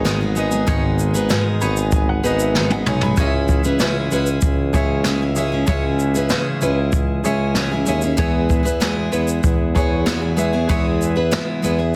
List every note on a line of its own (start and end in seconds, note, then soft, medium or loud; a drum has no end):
0.00 0.64 G#1 loud
0.00 0.36 G#4 medium
0.00 0.37 B4 medium
0.00 0.18 C#5 medium
0.00 0.38 D#5 loud
0.05 0.21 G#2 medium
0.05 0.20 D#3 medium
0.05 0.21 G#3 loud
0.05 0.21 B3 medium
0.05 0.20 D#4 loud
0.05 0.19 G#4 loud
0.05 snare loud
0.05 shaker medium
0.20 0.34 G#3 soft
0.20 0.35 B3 medium
0.20 0.36 D#4 soft
0.20 0.36 G#4 medium
0.35 0.51 G#3 medium
0.35 0.51 B3 medium
0.35 0.50 D#4 medium
0.35 0.60 G#4 medium
0.35 0.50 G#4 medium
0.35 0.60 B4 medium
0.35 0.60 D#5 medium
0.35 shaker medium
0.51 0.66 G#3 medium
0.51 0.67 B3 medium
0.51 0.67 D#4 medium
0.51 0.67 G#4 medium
0.51 shaker medium
0.67 1.32 G#1 loud
0.67 1.14 G#2 medium
0.67 1.14 D#3 medium
0.67 1.14 G#3 loud
0.67 1.14 B3 loud
0.67 1.13 D#4 loud
0.67 1.60 G#4 medium
0.67 1.12 G#4 medium
0.67 1.61 B4 medium
0.67 0.83 C#5 loud
0.67 1.62 D#5 loud
0.67 kick loud
0.67 shaker medium
0.99 shaker medium
1.14 1.29 G#3 medium
1.14 1.29 B3 medium
1.14 1.29 D#4 medium
1.14 1.30 G#4 medium
1.14 1.45 B4 medium
1.14 shaker medium
1.29 1.61 G#2 medium
1.29 1.61 D#3 medium
1.29 1.60 G#3 medium
1.29 1.60 B3 loud
1.29 1.61 D#4 medium
1.29 1.62 G#4 medium
1.29 snare loud
1.29 shaker medium
1.61 2.20 G#1 loud
1.61 2.23 G#3 medium
1.61 2.23 B3 medium
1.61 2.24 D#4 medium
1.61 2.25 G#4 medium
1.61 1.76 C#5 medium
1.61 1.76 B5 medium
1.61 shaker medium
1.77 1.91 G#5 medium
1.77 shaker medium
1.92 2.07 G#5 medium
1.92 kick loud
1.92 shaker medium
2.09 2.38 F#5 medium
2.23 2.83 G#1 loud
2.23 2.55 G#3 medium
2.23 2.55 B3 medium
2.23 2.56 D#4 medium
2.23 2.71 G#4 medium
2.23 2.55 G#4 medium
2.23 2.68 B4 medium
2.23 2.71 B4 medium
2.23 2.56 D#5 medium
2.23 shaker soft
2.39 2.55 E5 medium
2.39 shaker medium
2.55 2.71 G#2 medium
2.55 2.71 D#3 medium
2.55 2.71 G#3 medium
2.55 2.71 B3 loud
2.55 2.70 D#4 loud
2.55 2.69 G#4 medium
2.55 2.85 D#5 medium
2.55 snare medium
2.70 2.85 G#3 soft
2.70 2.86 B3 soft
2.70 2.86 D#4 soft
2.70 2.86 G#4 medium
2.70 2.86 F#5 medium
2.70 high tom medium
2.86 3.15 B1 medium
2.86 3.02 G#3 medium
2.86 3.02 B3 medium
2.86 3.03 D#4 medium
2.86 3.02 G#4 medium
2.86 3.16 C#5 medium
2.86 3.02 G#5 medium
2.86 mid tom loud
3.01 3.19 B3 medium
3.01 3.19 D#4 medium
3.01 3.18 G#4 medium
3.01 3.32 B5 medium
3.01 floor tom loud
3.05 3.17 G#3 medium
3.17 3.61 C#2 loud
3.17 3.65 C#3 medium
3.17 3.65 G#3 medium
3.17 3.64 C#4 medium
3.17 3.64 E4 loud
3.17 4.12 G#4 medium
3.17 3.63 G#4 loud
3.17 3.33 C#5 loud
3.17 4.12 C#5 medium
3.17 3.26 D#5 medium
3.17 kick loud
3.17 shaker medium
3.27 4.16 E5 medium
3.48 kick medium
3.48 shaker soft
3.64 4.08 C#2 medium
3.64 3.80 C#4 medium
3.64 3.81 E4 medium
3.64 3.80 G#4 medium
3.64 3.95 B4 medium
3.64 shaker medium
3.79 4.12 C#3 medium
3.79 4.10 G#3 medium
3.79 4.11 C#4 medium
3.79 4.12 E4 medium
3.79 4.12 G#4 loud
3.79 snare loud
3.79 shaker medium
4.11 4.41 C#2 loud
4.11 4.74 G#3 medium
4.11 4.74 C#4 medium
4.11 4.76 E4 medium
4.11 4.76 G#4 medium
4.11 4.27 B4 medium
4.11 shaker soft
4.26 shaker medium
4.42 5.64 C#2 loud
4.42 kick loud
4.42 shaker medium
4.73 5.04 G#3 medium
4.73 5.04 C#4 medium
4.73 5.05 E4 medium
4.73 5.20 G#4 medium
4.73 5.06 G#4 medium
4.73 5.21 C#5 medium
4.73 5.19 C#5 medium
4.73 5.22 E5 loud
4.73 kick medium
4.73 shaker medium
5.04 5.21 C#3 medium
5.04 5.21 G#3 medium
5.04 5.21 C#4 medium
5.04 5.21 E4 loud
5.04 5.20 G#4 loud
5.04 snare loud
5.04 shaker medium
5.21 5.36 C#4 soft
5.21 5.37 E4 soft
5.21 5.37 G#4 medium
5.36 5.52 G#3 medium
5.36 5.52 C#4 medium
5.36 5.52 E4 medium
5.36 5.60 G#4 medium
5.36 5.51 G#4 medium
5.36 5.60 C#5 medium
5.36 5.61 E5 medium
5.36 shaker medium
5.52 5.66 C#4 medium
5.52 5.67 E4 medium
5.52 5.68 G#4 medium
5.66 6.32 C#2 loud
5.66 6.15 C#3 medium
5.66 6.15 G#3 medium
5.66 6.15 C#4 loud
5.66 6.15 E4 medium
5.66 6.61 G#4 medium
5.66 6.14 G#4 medium
5.66 6.61 C#5 medium
5.66 5.84 C#5 medium
5.66 6.62 E5 loud
5.66 kick loud
5.66 shaker medium
5.99 shaker soft
6.15 6.30 C#4 medium
6.15 6.31 E4 medium
6.15 6.31 G#4 medium
6.15 6.46 B4 medium
6.15 shaker medium
6.30 6.62 C#3 medium
6.30 6.60 G#3 medium
6.30 6.60 C#4 medium
6.30 6.61 E4 medium
6.30 6.62 G#4 medium
6.30 snare loud
6.30 shaker medium
6.61 7.21 C#2 loud
6.61 7.25 G#3 medium
6.61 7.25 C#4 medium
6.61 7.26 E4 medium
6.61 7.27 G#4 medium
6.61 6.77 B4 medium
6.61 shaker soft
6.93 kick loud
6.93 shaker medium
7.24 7.84 C#2 medium
7.24 7.55 G#3 medium
7.24 7.55 C#4 medium
7.24 7.55 E4 medium
7.24 7.71 G#4 medium
7.24 7.56 G#4 medium
7.24 7.72 C#5 medium
7.24 7.69 C#5 medium
7.24 7.72 E5 loud
7.24 shaker soft
7.55 7.72 C#3 medium
7.55 7.72 G#3 medium
7.55 7.72 C#4 loud
7.55 7.72 E4 loud
7.55 7.70 G#4 loud
7.55 snare loud
7.55 shaker medium
7.71 7.87 C#4 soft
7.71 7.87 E4 medium
7.71 7.87 G#4 medium
7.86 8.16 D#2 medium
7.86 8.03 G#3 medium
7.86 8.03 C#4 medium
7.86 8.02 E4 medium
7.86 8.10 G#4 medium
7.86 8.01 G#4 medium
7.86 8.11 C#5 medium
7.86 8.11 E5 medium
7.86 shaker medium
8.01 8.18 C#4 medium
8.01 8.17 E4 medium
8.01 8.17 G#4 medium
8.01 shaker medium
8.17 8.62 E2 loud
8.17 8.65 E3 medium
8.17 8.65 G#3 medium
8.17 8.64 B3 loud
8.17 8.63 E4 loud
8.17 9.12 G#4 medium
8.17 8.62 G#4 loud
8.17 9.13 B4 medium
8.17 8.34 C#5 loud
8.17 9.13 E5 loud
8.17 kick loud
8.17 shaker medium
8.50 kick medium
8.50 shaker soft
8.63 9.09 E2 medium
8.63 8.80 B3 medium
8.63 8.80 E4 medium
8.63 8.80 G#4 medium
8.63 8.95 B4 medium
8.63 shaker medium
8.80 9.12 E3 medium
8.80 9.11 G#3 medium
8.80 9.12 B3 medium
8.80 9.12 E4 medium
8.80 9.12 G#4 medium
8.80 snare loud
8.80 shaker medium
9.12 9.42 E2 loud
9.12 9.74 G#3 medium
9.12 9.75 B3 medium
9.12 9.76 E4 medium
9.12 9.76 G#4 medium
9.12 9.27 B4 medium
9.12 shaker soft
9.28 shaker medium
9.44 10.65 E2 loud
9.44 kick loud
9.44 shaker medium
9.75 10.05 G#3 medium
9.75 10.05 B3 medium
9.75 10.06 E4 medium
9.75 10.22 G#4 medium
9.75 10.06 G#4 medium
9.75 10.22 B4 medium
9.75 10.20 C#5 medium
9.75 10.23 C#5 loud
9.75 kick medium
9.75 shaker soft
10.06 10.22 E3 medium
10.06 10.22 G#3 loud
10.06 10.22 B3 medium
10.06 10.21 E4 loud
10.06 10.20 G#4 loud
10.06 snare loud
10.06 shaker medium
10.21 10.36 B3 soft
10.21 10.37 E4 soft
10.21 10.37 G#4 soft
10.36 10.53 G#3 medium
10.36 10.53 B3 medium
10.36 10.52 E4 medium
10.36 10.61 G#4 medium
10.36 10.51 G#4 medium
10.36 10.61 B4 medium
10.36 10.62 E5 medium
10.36 shaker medium
10.53 10.68 B3 medium
10.53 10.69 E4 medium
10.53 10.69 G#4 medium
10.68 11.33 E2 loud
10.68 11.16 E3 medium
10.68 11.16 G#3 medium
10.68 11.17 B3 medium
10.68 11.16 E4 loud
10.68 11.62 G#4 medium
10.68 11.14 G#4 loud
10.68 11.63 B4 medium
10.68 10.85 C#5 loud
10.68 11.63 E5 medium
10.68 kick loud
10.68 shaker medium
11.02 shaker medium
11.16 11.30 B3 soft
11.16 11.31 E4 medium
11.16 11.32 G#4 medium
11.16 11.46 B4 medium
11.31 11.63 E3 medium
11.31 11.61 G#3 medium
11.31 11.62 B3 medium
11.31 11.63 E4 medium
11.31 11.63 G#4 medium
11.31 snare loud
11.31 shaker medium
11.62 11.96 E2 loud
11.62 11.79 G#3 medium
11.62 11.78 B3 medium
11.62 11.78 E4 medium
11.62 11.77 G#4 medium
11.62 11.79 B4 medium
11.62 shaker soft
11.78 11.96 B3 soft
11.78 11.96 E4 soft
11.78 11.96 G#4 medium